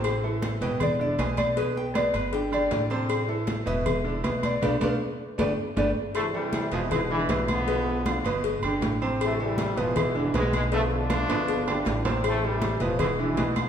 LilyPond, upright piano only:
\new Staff \with { instrumentName = "Upright piano" } { \time 4/4 \key a \minor \tempo 4 = 158 <c c' c''>8 <e e' a'>4 <b, b b'>4 <d d' e'>8 <b, b b'>4 | <b, b b'>4 <b, b b'>4 <d d' g'>8 <d d' g'>4 <c c' c''>8~ | <c c' c''>8 <e e' a'>4 <b, b b'>4 <d d' e'>8 <b, b b'>4 | <a b d'>8 <a b d'>8 r4 <a b d'>8 r8 <a b d'>8 r8 |
r8 <e e' a'>4 <b, b b'>8 <b, b b'>8 <d d' e'>8 <b, b b'>4 | <b, b b'>4 <d d' f'>8 <b, b b'>4 <d d' g'>4 <c c' c''>8~ | <c c' c''>8 <e e' a'>4 <b, b b'>8 <b, b b'>8 <d d' e'>8 <b, b b'>4 | <b, b b'>4 <d d' f'>8 <b, b b'>4 <d d' g'>4 <c c' c''>8~ |
<c c' c''>8 <e e' a'>4 <b, b b'>8 <b, b b'>8 <d d' e'>8 <b, b b'>4 | }